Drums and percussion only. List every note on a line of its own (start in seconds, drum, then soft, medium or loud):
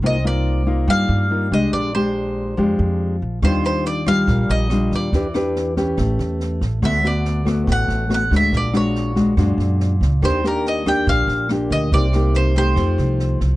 3.42 kick medium
3.42 cross-stick medium
3.42 snare soft
3.64 snare soft
3.85 snare soft
4.06 kick soft
4.06 cross-stick medium
4.06 snare soft
4.27 kick medium
4.27 snare soft
4.49 snare soft
4.70 cross-stick medium
4.70 snare soft
4.91 kick soft
4.91 snare soft
5.13 kick medium
5.13 snare soft
5.34 cross-stick medium
5.34 snare soft
5.56 snare soft
5.76 kick soft
5.76 snare soft
5.98 kick medium
5.98 cross-stick medium
5.98 snare soft
6.19 snare soft
6.40 snare soft
6.61 kick soft
6.61 snare soft
6.82 kick medium
6.82 cross-stick medium
6.82 snare soft
7.04 snare soft
7.25 snare soft
7.46 kick soft
7.46 cross-stick medium
7.46 snare soft
7.67 kick medium
7.67 snare soft
7.89 snare soft
8.10 cross-stick medium
8.10 snare soft
8.31 kick soft
8.31 snare soft
8.52 kick medium
8.52 snare soft
8.74 cross-stick medium
8.74 snare soft
8.95 snare soft
9.16 kick soft
9.16 snare soft
9.37 kick medium
9.37 cross-stick medium
9.37 snare soft
9.59 snare soft
9.80 snare soft
10.01 kick soft
10.01 snare soft
10.22 kick medium
10.22 cross-stick medium
10.22 snare soft
10.44 snare soft
10.65 snare soft
10.86 kick soft
10.86 cross-stick medium
10.86 snare soft
11.07 kick medium
11.07 snare soft
11.28 snare soft
11.49 cross-stick medium
11.49 snare soft
11.71 kick soft
11.71 snare soft
11.92 kick medium
11.92 snare soft
12.13 cross-stick medium
12.13 snare soft
12.34 snare soft
12.55 kick soft
12.55 snare soft
12.76 kick medium
12.76 cross-stick medium
12.76 snare soft
12.98 snare soft
13.19 snare soft
13.40 kick soft
13.40 snare soft